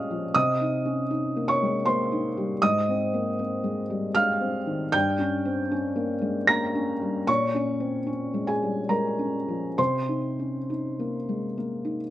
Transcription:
0.00 0.31 A#2 medium
0.00 0.36 G3 soft
0.00 0.36 G#3 soft
0.00 0.36 C4 soft
0.00 0.36 C#4 medium
0.00 0.36 C#5 medium
0.00 0.36 D#5 medium
0.00 0.30 F5 medium
0.00 0.36 C#6 medium
0.00 0.34 D#6 medium
0.00 0.34 F6 medium
0.10 0.34 F3 soft
0.34 2.58 C3 medium
0.34 1.44 D#5 medium
0.34 1.47 D#6 loud
0.61 1.00 D#4 medium
0.85 1.10 C#4 soft
1.11 1.50 D#4 medium
1.36 1.76 A#3 soft
1.48 1.84 C#5 medium
1.48 1.86 C#6 medium
1.62 1.86 G#3 soft
1.86 2.26 A#3 medium
1.86 2.58 C5 medium
1.86 2.61 C6 medium
2.12 2.52 D#4 medium
2.37 2.62 G3 medium
2.62 4.91 G#2 medium
2.62 4.13 D#5 medium
2.62 4.17 D#6 loud
2.89 3.29 C4 medium
3.14 3.39 A#3 medium
3.39 3.80 C4 medium
3.64 4.06 G#3 medium
3.90 4.16 G3 soft
4.15 4.57 G#3 medium
4.15 4.90 F5 medium
4.15 4.93 F6 loud
4.40 4.83 C4 medium
4.66 4.93 D#3 medium
4.92 7.23 G2 medium
4.92 6.44 G5 medium
4.92 6.48 G6 loud
5.19 5.60 C#4 medium
5.45 5.71 C4 soft
5.71 6.12 C#4 medium
5.96 6.38 A#3 medium
6.21 6.48 G#3 soft
6.47 6.91 A#3 medium
6.47 7.24 A#5 medium
6.47 7.27 A#6 loud
6.75 7.17 C#4 medium
7.01 7.28 G3 soft
7.27 9.74 A#2 medium
7.27 8.44 C#5 medium
7.27 8.48 C#6 loud
7.54 7.97 C#4 medium
7.80 8.07 C4 soft
8.07 8.50 C#4 soft
8.34 8.78 G#3 medium
8.47 8.87 G#4 medium
8.47 8.90 G#5 medium
8.62 8.90 G3 soft
8.89 9.36 G#3 soft
8.89 9.74 A#4 medium
8.89 9.77 A#5 medium
9.19 9.66 C#4 soft
9.48 9.78 F3 soft
9.78 12.10 C3 medium
9.78 11.95 C5 medium
9.78 11.99 C6 medium
10.09 10.56 D#4 soft
10.39 10.69 C#4 soft
10.70 11.16 D#4 soft
10.99 11.45 A#3 soft
11.29 11.57 G#3 soft
11.58 12.03 A#3 soft
11.85 12.10 D#4 soft

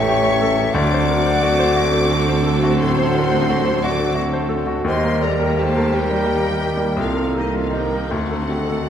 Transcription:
0.00 0.69 A1 medium
0.00 0.76 A1 medium
0.00 0.77 E2 medium
0.00 0.70 A2 medium
0.00 0.72 E3 medium
0.00 0.70 G3 medium
0.00 0.18 A3 medium
0.00 0.72 A3 medium
0.00 0.70 C#4 medium
0.00 0.72 C#4 medium
0.00 0.09 G4 medium
0.00 0.72 G4 medium
0.00 0.42 A4 medium
0.00 0.70 A4 medium
0.00 0.77 B4 medium
0.00 0.24 C#5 medium
0.00 0.74 C#5 loud
0.00 0.75 E5 loud
0.00 0.73 C#6 loud
0.09 0.35 G4 medium
0.24 0.50 C#5 medium
0.42 0.68 A4 medium
0.58 0.75 G4 medium
0.73 4.87 D2 medium
0.73 4.70 D2 medium
0.73 2.76 D2 loud
0.73 1.72 D3 medium
0.73 2.75 D3 medium
0.73 4.82 F#3 medium
0.73 2.76 A3 medium
0.73 4.82 C4 medium
0.73 2.77 C4 medium
0.73 2.76 F#4 loud
0.73 4.83 A4 medium
0.73 2.49 D5 loud
0.73 2.53 F#5 loud
0.73 2.79 D6 loud
0.94 1.19 C5 medium
1.09 1.25 A#4 medium
1.26 1.52 C5 medium
1.43 1.69 F#4 medium
1.59 1.86 C5 medium
1.76 2.03 F#4 medium
1.94 2.21 A3 medium
2.11 2.38 F#4 medium
2.29 2.56 C5 medium
2.46 2.73 A4 medium
2.63 2.91 F#4 medium
2.78 3.80 D3 medium
2.78 3.80 A3 medium
2.78 3.80 C4 medium
2.78 3.81 F#4 medium
2.78 3.85 C5 loud
2.78 3.80 F#5 loud
2.78 3.81 C6 loud
2.82 3.08 A2 medium
2.98 3.25 C5 medium
3.16 3.32 A#4 medium
3.32 3.59 C5 medium
3.50 3.77 F#4 medium
3.65 3.93 C5 medium
3.82 4.85 D3 medium
3.82 4.85 A3 medium
3.82 4.85 C4 medium
3.82 4.85 F#4 medium
3.82 4.11 F#4 medium
3.82 4.18 D5 medium
3.82 4.17 F#5 medium
3.82 4.18 D6 loud
3.99 4.27 A3 medium
4.15 4.44 F#4 medium
4.33 4.62 C5 medium
4.49 4.78 A4 medium
4.67 4.86 F#4 medium
4.84 6.94 D#2 medium
4.84 6.96 D#2 medium
4.84 7.01 D#2 medium
4.84 5.75 D#3 medium
4.84 5.75 G3 medium
4.84 6.96 G3 medium
4.84 6.96 A#3 medium
4.84 5.76 A#3 medium
4.84 5.76 G4 medium
4.84 6.96 G4 medium
4.84 5.24 D#5 loud
4.84 5.21 C6 loud
4.88 5.26 C5 loud
5.03 5.33 A#4 medium
5.22 5.40 A4 medium
5.22 5.62 A#4 medium
5.22 5.58 D5 medium
5.22 5.59 A#5 loud
5.40 5.69 A#4 medium
5.57 5.86 G4 medium
5.57 5.96 A4 medium
5.57 5.96 C5 medium
5.57 5.95 A5 loud
5.75 6.04 A#4 medium
5.92 6.96 D#3 medium
5.92 6.96 G3 medium
5.92 6.97 A#3 medium
5.92 6.21 G4 medium
5.92 6.98 G4 medium
5.92 7.01 G4 medium
5.92 6.99 A#4 loud
5.97 7.01 G5 loud
6.11 6.39 G3 medium
6.26 6.55 G4 medium
6.42 6.72 A#4 medium
6.61 6.91 G4 medium
6.77 6.97 G3 medium
6.96 8.07 C2 medium
6.96 8.12 C2 medium
6.96 8.13 C2 medium
6.96 8.12 C2 medium
6.96 8.10 D#3 medium
6.96 8.09 A#3 medium
6.96 8.08 A#3 medium
6.96 8.10 C4 medium
6.96 8.89 C4 medium
6.96 8.89 D#4 medium
6.96 7.37 F4 medium
6.96 8.10 G4 medium
6.96 7.38 A4 medium
7.01 7.38 F5 loud
7.14 7.46 A#4 medium
7.34 7.58 D#4 medium
7.34 7.54 G4 medium
7.34 7.54 A4 medium
7.38 7.56 D#5 medium
7.53 7.77 F4 medium
7.53 7.75 A4 medium
7.53 7.84 A#4 medium
7.60 7.77 F5 medium
7.70 8.03 D#4 medium
7.70 8.11 A#4 medium
7.75 8.14 G4 medium
7.75 8.13 G5 medium
7.92 8.11 A#4 medium
8.09 8.89 D2 medium
8.09 8.89 D#3 medium
8.09 8.89 A3 medium
8.09 8.89 C4 medium
8.09 8.89 F#4 medium
8.09 8.89 A4 medium
8.09 8.89 F#5 loud
8.31 8.62 A4 medium
8.50 8.70 G4 medium
8.69 8.89 A4 medium

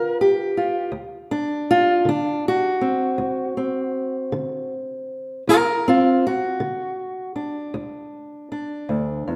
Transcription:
0.00 0.48 D3 medium
0.00 0.90 B3 soft
0.00 0.56 F4 soft
0.00 0.19 A#4 medium
0.21 0.95 G4 medium
0.57 0.90 F4 soft
0.92 1.61 D2 medium
1.31 2.07 D4 medium
1.71 2.08 F4 medium
2.05 2.74 D3 medium
2.05 2.46 D4 medium
2.48 4.73 F#4 medium
2.81 3.56 C4 soft
3.18 3.87 D2 medium
3.57 5.42 C4 soft
4.32 5.01 D3 medium
5.47 6.16 D2 medium
5.47 5.54 F#4 medium
5.47 5.87 A#4 medium
5.88 6.24 C4 medium
5.88 6.25 F4 medium
6.27 7.35 F#4 medium
6.60 7.29 D3 medium
7.36 8.51 D4 soft
7.74 8.43 D2 medium
8.52 9.36 D4 soft
8.89 9.27 D2 medium
9.28 9.36 E2 medium

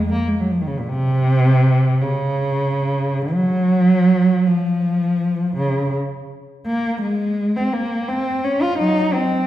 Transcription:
0.00 0.11 G#3 medium
0.12 0.28 A#3 medium
0.28 0.40 G#3 medium
0.40 0.49 F#3 medium
0.51 0.59 F3 medium
0.61 0.69 D#3 medium
0.68 0.79 C#3 medium
0.80 0.91 A#2 medium
0.89 2.01 C3 loud
2.01 3.32 C#3 medium
3.33 4.47 F#3 loud
4.47 5.58 F3 medium
5.56 5.93 C#3 medium
6.66 7.00 A#3 medium
7.02 7.55 G#3 medium
7.56 7.74 C4 medium
7.73 8.09 A#3 medium
8.08 8.44 C4 medium
8.44 8.62 C#4 medium
8.62 8.80 F4 medium
8.78 9.11 F#3 medium
8.78 9.13 D#4 medium
9.14 9.47 C4 medium

